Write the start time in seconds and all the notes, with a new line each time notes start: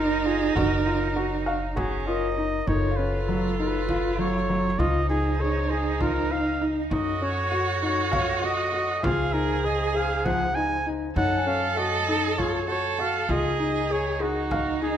Already playing: F#1 F#3 D#4 F4 A#4 A#5
0.26 F4 G#4
0.55 F#1 D#4 F#4 A#4, frame drum
0.87 F4
1.16 F#4
1.46 F#4 F5
1.76 C#4 F#4 G#4, frame drum
2.06 F4 A#4 D#5
2.38 D#4
2.67 F#1 F#3 C#4 D#4 F4 A4 C#5, frame drum
2.91 F5
2.96 C#4 B4
3.29 F#3
3.59 D#4 B4
3.89 F4 F5, frame drum
4.19 F#3 C#5
4.50 F#3
4.79 C#2 F3 D#4 F4 D#5, frame drum
5.09 D#4 G#4
5.40 G#4 C#5
5.70 G#4
6.00 F4 A#4, frame drum
6.31 D#4 F5
6.61 D#4
6.91 F#2 F#3 D#4 F#4 A4 D#5, frame drum
7.22 C#4 C#5
7.52 F#4
7.82 D#4 C#5
8.12 C#5 F5, frame drum
8.42 F#4 D#5
8.72 F#4
9.02 C#2 F3 D#4 F4 G#4 F5, frame drum
9.33 D#4 A#4, frame drum
9.64 G#4 D#5
9.94 G#4 F5, frame drum
10.25 F3 F#5, frame drum
10.55 D#4 G#5
10.86 D#4, frame drum
11.16 F#2 F#3 D#4 A4 C#5 F#5, frame drum
11.37 G#5
11.47 C#4 F5
11.77 F#4 D#5
12.08 D#4
12.38 F4 C#5, frame drum
12.68 F#4 A4 C#5
12.99 F#4 F5
13.29 C#2 D#3 D#4 F4 G#4 D#5, frame drum
13.60 D#4
13.90 G#4 C#5
14.20 D#4 F#4 G#4
14.51 F5, frame drum
14.82 D#4 G#4